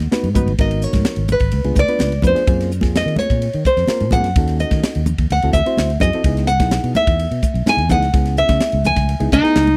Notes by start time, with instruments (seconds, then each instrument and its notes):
0.00 snare, ride
0.12 reed electric piano B3 D#4 F#4 B4, snare, ride, high conga
0.23 fretless electric bass G#2, ride
0.35 reed electric piano B3 D#4 F#4 B4, kick, hi-hat pedal, high conga, low conga
0.46 fretless electric bass A1, ride
0.59 fretless electric bass G#1, reed electric piano B3 D#4 F#4 A#4, nylon-string guitar D#5, kick, ride
0.71 ride
0.82 nylon-string guitar C#5, hi-hat pedal
0.93 fretless electric bass G#2, kick, snare, ride, high conga, low conga
1.05 snare, ride
1.16 fretless electric bass G#1, ride
1.28 hi-hat pedal, high conga, low conga
1.32 nylon-string guitar B4
1.40 fretless electric bass G#1, kick, ride
1.52 fretless electric bass C#2, ride
1.64 fretless electric bass C#2, reed electric piano B3 D4 F4 G#4, ride
1.75 fretless electric bass C#2, nylon-string guitar D5, kick, hi-hat pedal, high conga
1.88 reed electric piano B3 D4 F4 B4, ride
1.99 fretless electric bass C#2, snare, ride, high conga
2.12 ride
2.22 fretless electric bass F2, reed electric piano B3 D4 F4 B4, kick, hi-hat pedal, high conga, low conga
2.27 nylon-string guitar C5
2.34 reed electric piano B3 D4 F4 G#4, muted fretless electric bass stroke, snare, ride
2.47 fretless electric bass F#2, reed electric piano A#3 C4 F4 G#4, kick, ride
2.61 snare, ride
2.72 hi-hat pedal
2.81 fretless electric bass F2, reed electric piano A#3 C4 F4 G#4, kick, snare, ride, high conga
2.95 nylon-string guitar D#5, snare, ride
3.06 fretless electric bass D#3, ride
3.16 nylon-string guitar C#5, muted fretless electric bass stroke, hi-hat pedal, high conga, low conga
3.30 fretless electric bass A#2, kick, ride
3.42 ride
3.53 fretless electric bass D#3, ride
3.65 nylon-string guitar C5, muted fretless electric bass stroke, kick, hi-hat pedal
3.77 fretless electric bass F2, snare, ride
3.87 reed electric piano A#3 C4 F4 A#4, muted fretless electric bass stroke, snare, ride, high conga
4.00 fretless electric bass A#2, ride
4.11 reed electric piano A#3 C4 F4 G#4, nylon-string guitar F#5, kick, hi-hat pedal, high conga, low conga
4.24 fretless electric bass F#2, snare, ride
4.36 fretless electric bass D#2, reed electric piano C#4 D#4 F#4 A4, kick, ride
4.47 snare, ride
4.59 nylon-string guitar D#5, hi-hat pedal
4.71 fretless electric bass D#3, kick, snare, ride, high conga
4.83 snare, ride
4.95 fretless electric bass D#2, ride
5.06 hi-hat pedal, high conga, low conga
5.18 fretless electric bass D#2, kick, ride
5.30 fretless electric bass D2, nylon-string guitar F#5, ride
5.42 fretless electric bass D2, reed electric piano C4 E4 F#4 A4, ride
5.53 fretless electric bass D2, nylon-string guitar E5, kick, hi-hat pedal, high conga
5.66 reed electric piano C4 E4 F#4 C5, ride
5.77 fretless electric bass D2, snare, ride, high conga
5.90 ride
6.00 fretless electric bass F#2, reed electric piano C4 E4 F#4 G#4, nylon-string guitar D#5, kick, hi-hat pedal, high conga, low conga
6.13 reed electric piano C4 E4 F#4 A4, muted fretless electric bass stroke, ride
6.24 fretless electric bass C#2, reed electric piano B3 D#4 E4 G#4, kick, ride
6.37 snare, ride
6.47 nylon-string guitar F#5, hi-hat pedal
6.60 fretless electric bass B1, reed electric piano B3 D#4 E4 G#4, kick, snare, ride, high conga
6.71 snare, ride
6.84 fretless electric bass B2, ride
6.95 nylon-string guitar E5, muted fretless electric bass stroke, hi-hat pedal, high conga, low conga
7.07 fretless electric bass E2, kick, ride
7.19 ride
7.31 fretless electric bass B2, ride
7.43 kick, hi-hat pedal, high conga
7.54 fretless electric bass B1, ride
7.66 reed electric piano B3 D#4 E4 G#4, nylon-string guitar G#5, snare, ride, high conga
7.77 fretless electric bass E2, ride
7.89 reed electric piano B3 D#4 E4 G#4, nylon-string guitar F#5, kick, hi-hat pedal, high conga, low conga
8.01 fretless electric bass C#2, snare, ride
8.13 fretless electric bass C#2, reed electric piano B3 C#4 E4 G#4, kick, ride
8.26 snare, ride
8.37 nylon-string guitar E5, hi-hat pedal
8.49 fretless electric bass C#3, kick, snare, ride, high conga, low conga
8.60 snare, ride
8.72 fretless electric bass C#2, ride
8.84 nylon-string guitar G#5, hi-hat pedal, high conga, low conga
8.96 fretless electric bass C#2, kick, snare, ride
9.09 ride
9.20 fretless electric bass C#2, reed electric piano B3 D#4 E4 G#4, ride
9.32 fretless electric bass C#2, nylon-string guitar D#4 D#5, kick, hi-hat pedal, high conga
9.42 reed electric piano B3 D#4 E4 G#4, muted fretless electric bass stroke, snare, ride
9.56 fretless electric bass C#2, snare, ride, high conga
9.67 ride, high conga